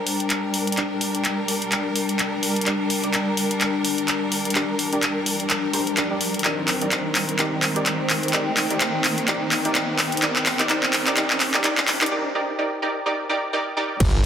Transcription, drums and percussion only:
0.07 open hi-hat
0.20 closed hi-hat
0.30 clap, closed hi-hat
0.54 open hi-hat
0.67 closed hi-hat
0.72 closed hi-hat
0.77 clap, closed hi-hat
1.01 open hi-hat
1.15 closed hi-hat
1.25 clap, closed hi-hat
1.48 open hi-hat
1.62 closed hi-hat
1.72 clap, closed hi-hat
1.96 open hi-hat
2.09 closed hi-hat
2.19 clap, closed hi-hat
2.43 open hi-hat
2.56 closed hi-hat
2.61 closed hi-hat
2.66 clap, closed hi-hat
2.90 open hi-hat
3.04 closed hi-hat
3.14 clap, closed hi-hat
3.37 open hi-hat
3.51 closed hi-hat
3.61 clap, closed hi-hat
3.85 open hi-hat
3.98 closed hi-hat
4.08 clap, closed hi-hat
4.32 open hi-hat
4.45 closed hi-hat
4.50 closed hi-hat
4.55 clap, closed hi-hat
4.79 open hi-hat
4.93 closed hi-hat
5.03 clap, closed hi-hat
5.26 open hi-hat
5.40 closed hi-hat
5.50 clap, closed hi-hat
5.73 open hi-hat
5.87 closed hi-hat
5.97 clap, closed hi-hat
6.21 open hi-hat
6.34 closed hi-hat
6.39 closed hi-hat
6.44 clap, closed hi-hat
6.68 clap, open hi-hat
6.82 closed hi-hat
6.92 clap, closed hi-hat
7.15 clap, open hi-hat
7.29 closed hi-hat
7.39 clap, closed hi-hat
7.62 clap, open hi-hat
7.76 closed hi-hat
7.86 clap, closed hi-hat
8.10 clap, open hi-hat
8.23 closed hi-hat
8.28 closed hi-hat
8.33 clap, closed hi-hat
8.57 clap, open hi-hat
8.71 closed hi-hat
8.81 clap, closed hi-hat
9.04 clap, open hi-hat
9.18 closed hi-hat
9.28 clap, closed hi-hat
9.52 clap, open hi-hat
9.65 closed hi-hat
9.75 clap, closed hi-hat
9.99 clap, open hi-hat
10.12 closed hi-hat
10.17 closed hi-hat
10.22 clap, closed hi-hat
10.36 clap
10.46 clap, open hi-hat
10.59 clap, closed hi-hat
10.70 clap, closed hi-hat
10.83 clap
10.93 clap, open hi-hat
11.07 clap, closed hi-hat
11.17 clap, closed hi-hat
11.30 clap
11.40 clap, open hi-hat
11.54 clap, closed hi-hat
11.64 clap, closed hi-hat
11.78 clap
11.88 clap, open hi-hat
12.01 clap, closed hi-hat
12.06 closed hi-hat
14.00 kick, closed hi-hat, crash

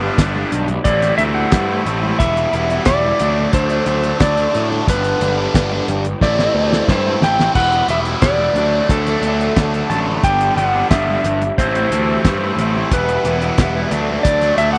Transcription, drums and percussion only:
0.18 kick, snare, closed hi-hat
0.36 high conga
0.52 closed hi-hat, low conga
0.68 closed hi-hat, high conga
0.85 kick, closed hi-hat
1.02 snare, closed hi-hat
1.18 closed hi-hat
1.52 kick, snare, closed hi-hat
1.86 closed hi-hat
2.03 high conga
2.20 kick, closed hi-hat
2.37 closed hi-hat
2.53 closed hi-hat
2.70 closed hi-hat
2.85 kick, snare, closed hi-hat
3.04 high conga
3.19 closed hi-hat, low conga
3.53 kick, closed hi-hat
3.69 closed hi-hat
3.86 closed hi-hat
4.03 closed hi-hat
4.20 kick, snare, closed hi-hat
4.37 closed hi-hat
4.54 closed hi-hat, low conga
4.72 high conga
4.88 kick, closed hi-hat, low conga
5.04 closed hi-hat
5.21 closed hi-hat, high conga, low conga
5.54 kick, snare, closed hi-hat
5.72 high conga
5.88 closed hi-hat, low conga
6.05 closed hi-hat, high conga
6.21 kick, snare
6.39 snare
6.73 snare
6.88 kick, snare, high conga
7.06 high conga
7.22 snare, low conga
7.39 snare, low conga
7.55 kick, crash
7.72 closed hi-hat
7.88 closed hi-hat, low conga
8.05 closed hi-hat
8.22 kick, snare, closed hi-hat
8.38 high conga
8.56 closed hi-hat, low conga
8.89 kick, closed hi-hat
9.07 snare, closed hi-hat
9.23 closed hi-hat
9.41 closed hi-hat
9.56 kick, snare, closed hi-hat
9.74 closed hi-hat
9.90 closed hi-hat, low conga
10.07 high conga
10.23 kick, closed hi-hat
10.41 closed hi-hat
10.58 closed hi-hat, low conga
10.91 kick, snare, closed hi-hat
11.08 high conga
11.24 closed hi-hat, low conga
11.42 closed hi-hat, high conga
11.58 kick, closed hi-hat
11.75 closed hi-hat
11.92 closed hi-hat
12.25 kick, snare, closed hi-hat
12.59 closed hi-hat, low conga
12.76 high conga
12.91 kick, closed hi-hat
13.09 closed hi-hat
13.25 closed hi-hat, low conga
13.42 closed hi-hat
13.58 kick, snare, closed hi-hat
13.75 high conga
13.91 closed hi-hat, low conga
14.10 high conga
14.25 kick, closed hi-hat
14.41 snare, closed hi-hat
14.58 closed hi-hat

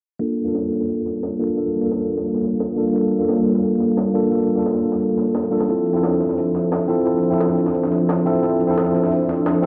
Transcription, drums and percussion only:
0.20 closed hi-hat
0.38 closed hi-hat
0.55 snare, closed hi-hat
0.72 snare, closed hi-hat
0.80 snare
0.89 open hi-hat
1.06 snare, closed hi-hat
1.23 snare, closed hi-hat
1.40 closed hi-hat
1.57 closed hi-hat
1.74 closed hi-hat
1.92 snare, closed hi-hat
2.00 snare
2.09 closed hi-hat
2.17 snare
2.26 closed hi-hat
2.34 snare
2.43 snare, closed hi-hat
2.60 snare, closed hi-hat
2.77 closed hi-hat
2.86 closed hi-hat
2.94 closed hi-hat
3.12 closed hi-hat
3.29 snare, closed hi-hat
3.37 closed hi-hat
3.46 snare, closed hi-hat
3.54 snare
3.63 open hi-hat
3.80 snare, closed hi-hat
3.97 snare, closed hi-hat
4.15 closed hi-hat
4.32 closed hi-hat
4.49 closed hi-hat
4.66 snare, closed hi-hat
4.75 snare
4.83 closed hi-hat
4.92 snare
5.00 closed hi-hat
5.18 snare, closed hi-hat
5.35 snare, closed hi-hat
5.43 snare
5.52 closed hi-hat
5.61 snare, closed hi-hat
5.69 closed hi-hat
5.86 closed hi-hat
6.03 snare, closed hi-hat
6.12 closed hi-hat
6.20 snare, closed hi-hat
6.29 snare
6.38 open hi-hat
6.55 snare, closed hi-hat
6.72 snare, closed hi-hat
6.89 closed hi-hat
7.06 closed hi-hat
7.23 closed hi-hat
7.40 snare, closed hi-hat
7.49 snare
7.58 closed hi-hat
7.66 snare
7.75 closed hi-hat
7.83 snare
7.92 snare, closed hi-hat
8.09 snare, closed hi-hat
8.26 closed hi-hat
8.35 closed hi-hat
8.43 closed hi-hat
8.61 closed hi-hat
8.78 snare, closed hi-hat
8.86 closed hi-hat
8.95 snare, closed hi-hat
9.03 snare
9.12 open hi-hat
9.29 snare, closed hi-hat
9.46 snare, closed hi-hat

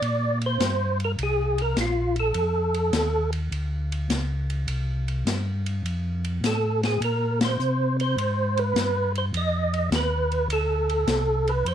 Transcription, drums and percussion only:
0.02 ride
0.41 ride
0.60 snare, hi-hat pedal, ride
1.00 ride
1.19 ride
1.58 ride
1.77 snare, hi-hat pedal, ride
2.16 ride
2.34 ride
2.74 ride
2.93 snare, hi-hat pedal, ride
3.33 ride
3.52 ride
3.92 ride
4.10 snare, hi-hat pedal, ride
4.50 ride
4.68 ride
5.08 ride
5.27 snare, hi-hat pedal, ride
5.66 ride
5.86 ride
6.25 ride
6.44 snare, hi-hat pedal, ride
6.83 snare, ride
7.02 ride
7.41 snare, ride
7.60 hi-hat pedal
8.00 ride
8.18 ride
8.57 ride
8.76 snare, hi-hat pedal, ride
9.15 ride
9.34 ride
9.73 ride
9.92 snare, hi-hat pedal, ride
10.32 ride
10.50 ride
10.89 ride
11.07 snare, hi-hat pedal, ride
11.48 ride
11.66 ride

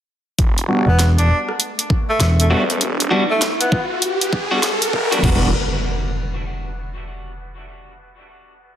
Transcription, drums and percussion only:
0.39 kick, closed hi-hat
0.58 closed hi-hat
0.99 snare, closed hi-hat
1.18 closed hi-hat
1.49 cross-stick
1.60 closed hi-hat
1.79 closed hi-hat
1.90 kick
2.20 snare, closed hi-hat
2.40 closed hi-hat
2.70 closed hi-hat
2.81 closed hi-hat
3.00 closed hi-hat
3.42 snare, closed hi-hat
3.61 closed hi-hat
3.72 kick
4.02 closed hi-hat
4.21 closed hi-hat
4.33 kick
4.63 snare, closed hi-hat
4.82 closed hi-hat
4.93 kick
5.12 closed hi-hat
5.24 kick, crash

